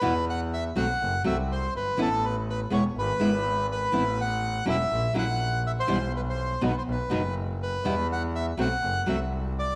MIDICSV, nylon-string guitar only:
0, 0, Header, 1, 2, 480
1, 0, Start_track
1, 0, Tempo, 488599
1, 32, Time_signature, 4, 2, 24, 8
1, 9582, End_track
2, 0, Start_track
2, 0, Title_t, "Nylon-string guitar"
2, 0, Program_c, 0, 24
2, 13, Note_on_c, 0, 47, 75
2, 19, Note_on_c, 0, 52, 71
2, 23, Note_on_c, 0, 59, 80
2, 25, Note_on_c, 0, 64, 73
2, 29, Note_on_c, 0, 66, 70
2, 111, Note_off_c, 0, 47, 0
2, 115, Note_off_c, 0, 52, 0
2, 116, Note_off_c, 0, 59, 0
2, 117, Note_off_c, 0, 64, 0
2, 120, Note_off_c, 0, 66, 0
2, 742, Note_on_c, 0, 54, 66
2, 749, Note_on_c, 0, 57, 63
2, 751, Note_on_c, 0, 66, 76
2, 753, Note_on_c, 0, 60, 73
2, 837, Note_off_c, 0, 54, 0
2, 840, Note_off_c, 0, 57, 0
2, 842, Note_off_c, 0, 66, 0
2, 843, Note_off_c, 0, 60, 0
2, 1220, Note_on_c, 0, 54, 67
2, 1222, Note_on_c, 0, 57, 60
2, 1230, Note_on_c, 0, 60, 70
2, 1231, Note_on_c, 0, 66, 73
2, 1316, Note_off_c, 0, 54, 0
2, 1317, Note_off_c, 0, 57, 0
2, 1321, Note_off_c, 0, 60, 0
2, 1322, Note_off_c, 0, 66, 0
2, 1937, Note_on_c, 0, 52, 68
2, 1943, Note_on_c, 0, 59, 72
2, 1950, Note_on_c, 0, 61, 76
2, 1955, Note_on_c, 0, 64, 77
2, 2034, Note_off_c, 0, 52, 0
2, 2037, Note_off_c, 0, 59, 0
2, 2041, Note_off_c, 0, 61, 0
2, 2043, Note_off_c, 0, 64, 0
2, 2656, Note_on_c, 0, 56, 68
2, 2665, Note_on_c, 0, 59, 68
2, 2673, Note_on_c, 0, 64, 76
2, 2753, Note_off_c, 0, 56, 0
2, 2757, Note_off_c, 0, 59, 0
2, 2761, Note_off_c, 0, 64, 0
2, 3139, Note_on_c, 0, 56, 72
2, 3148, Note_on_c, 0, 59, 68
2, 3151, Note_on_c, 0, 64, 81
2, 3234, Note_off_c, 0, 56, 0
2, 3238, Note_off_c, 0, 59, 0
2, 3240, Note_off_c, 0, 64, 0
2, 3851, Note_on_c, 0, 52, 72
2, 3860, Note_on_c, 0, 59, 73
2, 3860, Note_on_c, 0, 60, 68
2, 3866, Note_on_c, 0, 64, 81
2, 3948, Note_off_c, 0, 52, 0
2, 3953, Note_off_c, 0, 59, 0
2, 3953, Note_off_c, 0, 60, 0
2, 3956, Note_off_c, 0, 64, 0
2, 4572, Note_on_c, 0, 54, 66
2, 4578, Note_on_c, 0, 61, 71
2, 4581, Note_on_c, 0, 58, 75
2, 4586, Note_on_c, 0, 64, 75
2, 4667, Note_off_c, 0, 54, 0
2, 4670, Note_off_c, 0, 61, 0
2, 4672, Note_off_c, 0, 58, 0
2, 4674, Note_off_c, 0, 64, 0
2, 5050, Note_on_c, 0, 54, 67
2, 5054, Note_on_c, 0, 58, 70
2, 5061, Note_on_c, 0, 61, 68
2, 5065, Note_on_c, 0, 64, 75
2, 5145, Note_off_c, 0, 54, 0
2, 5147, Note_off_c, 0, 58, 0
2, 5151, Note_off_c, 0, 61, 0
2, 5153, Note_off_c, 0, 64, 0
2, 5769, Note_on_c, 0, 47, 67
2, 5774, Note_on_c, 0, 55, 67
2, 5775, Note_on_c, 0, 52, 67
2, 5778, Note_on_c, 0, 64, 72
2, 5779, Note_on_c, 0, 59, 76
2, 5864, Note_off_c, 0, 47, 0
2, 5867, Note_off_c, 0, 52, 0
2, 5867, Note_off_c, 0, 55, 0
2, 5869, Note_off_c, 0, 59, 0
2, 5869, Note_off_c, 0, 64, 0
2, 6497, Note_on_c, 0, 47, 69
2, 6501, Note_on_c, 0, 59, 72
2, 6502, Note_on_c, 0, 54, 66
2, 6505, Note_on_c, 0, 63, 67
2, 6506, Note_on_c, 0, 66, 76
2, 6588, Note_off_c, 0, 47, 0
2, 6590, Note_off_c, 0, 54, 0
2, 6590, Note_off_c, 0, 59, 0
2, 6592, Note_off_c, 0, 63, 0
2, 6592, Note_off_c, 0, 66, 0
2, 6974, Note_on_c, 0, 47, 60
2, 6983, Note_on_c, 0, 54, 65
2, 6983, Note_on_c, 0, 59, 67
2, 6987, Note_on_c, 0, 63, 72
2, 6988, Note_on_c, 0, 66, 71
2, 7067, Note_off_c, 0, 47, 0
2, 7072, Note_off_c, 0, 54, 0
2, 7072, Note_off_c, 0, 59, 0
2, 7074, Note_off_c, 0, 63, 0
2, 7074, Note_off_c, 0, 66, 0
2, 7708, Note_on_c, 0, 47, 66
2, 7711, Note_on_c, 0, 52, 63
2, 7713, Note_on_c, 0, 55, 68
2, 7717, Note_on_c, 0, 59, 73
2, 7718, Note_on_c, 0, 64, 72
2, 7797, Note_off_c, 0, 47, 0
2, 7798, Note_off_c, 0, 52, 0
2, 7799, Note_off_c, 0, 55, 0
2, 7801, Note_off_c, 0, 59, 0
2, 7802, Note_off_c, 0, 64, 0
2, 8423, Note_on_c, 0, 54, 68
2, 8433, Note_on_c, 0, 57, 60
2, 8436, Note_on_c, 0, 60, 67
2, 8437, Note_on_c, 0, 66, 69
2, 8515, Note_off_c, 0, 54, 0
2, 8520, Note_off_c, 0, 57, 0
2, 8521, Note_off_c, 0, 60, 0
2, 8521, Note_off_c, 0, 66, 0
2, 8902, Note_on_c, 0, 54, 68
2, 8909, Note_on_c, 0, 57, 63
2, 8913, Note_on_c, 0, 60, 68
2, 8916, Note_on_c, 0, 66, 68
2, 8994, Note_off_c, 0, 54, 0
2, 8998, Note_off_c, 0, 57, 0
2, 9000, Note_off_c, 0, 60, 0
2, 9001, Note_off_c, 0, 66, 0
2, 9582, End_track
0, 0, End_of_file